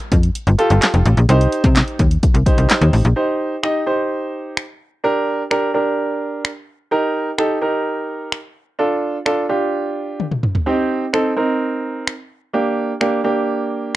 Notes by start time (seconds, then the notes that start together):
0.00 closed hi-hat
0.12 F2, kick, closed hi-hat
0.23 closed hi-hat
0.35 closed hi-hat
0.47 G1, closed hi-hat
0.58 F4 G4 A4, closed hi-hat
0.70 G1, closed hi-hat
0.82 snare, clap, closed hi-hat
0.94 F1, closed hi-hat
1.05 A1, closed hi-hat
1.17 A#1, closed hi-hat
1.29 C2 D#4 G4 C5, closed hi-hat
1.41 closed hi-hat
1.52 closed hi-hat
1.64 C3, kick, closed hi-hat
1.76 snare, clap, closed hi-hat
1.88 closed hi-hat
1.99 D#2, kick, closed hi-hat
2.11 closed hi-hat
2.23 kick, closed hi-hat
2.34 C2, closed hi-hat
2.46 D#4 G4 C5, kick, closed hi-hat
2.58 C2, closed hi-hat
2.70 snare, clap, closed hi-hat
2.81 D#2, closed hi-hat
2.93 A1, open hi-hat
3.05 A#1, closed hi-hat
3.16 D#4 G4 C5
3.63 D#4 G4 D#5, finger snap
3.86 D#4 G4 C5
4.57 finger snap
5.04 D4 G4 A#4
5.51 D4 G4 A#4, finger snap
5.74 D4 G4 A#4
6.45 finger snap
6.91 D#4 G4 A#4
7.38 D#4 G4 A4, finger snap
7.61 D#4 G4 A#4
8.32 finger snap
8.79 D4 F4 A4
9.26 D4 F4 A4, finger snap
9.49 D4 F4 G4
10.20 high tom
10.31 mid tom
10.43 mid tom
10.55 floor tom
10.66 C4 D#4 G4
11.13 C4 D#4 A4, finger snap
11.37 C4 D#4 A#4
12.07 finger snap
12.53 A#3 D4 G4
13.01 A#3 D4 G4, finger snap
13.24 A#3 D4 G4